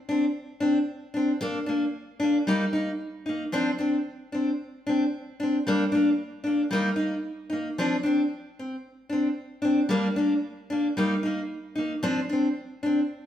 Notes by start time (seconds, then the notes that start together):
0.09 C4 D4
0.60 C4 D4
1.14 C4 D4
1.41 A#3 D4, muted steel-string acoustic guitar stroke
1.66 A#3 D4
2.20 A#3 D4
2.47 G3 A#3 D#4
2.73 A#3 D#4
3.26 A#3 D#4
3.52 F3 C4 D4
3.78 C4 D4
4.32 C4 D4
4.87 C4 D4
5.40 C4 D4
5.67 G3 A#3 D4
5.92 A#3 D4
6.44 A#3 D4
6.71 G3 A#3 D#4
6.96 A#3 D#4
7.50 A#3 D#4
7.78 F3 C4 D4
8.03 C4 D4
8.59 C4
9.09 C4 D4
9.62 C4 D4
9.89 G3 A#3 D4
10.16 A#3 D4
10.70 A#3 D4
10.97 G3 A#3 D#4
11.23 A#3 D#4
11.75 A#3 D#4
12.03 F3 C4 D4
12.29 C4 D4
12.83 C4 D4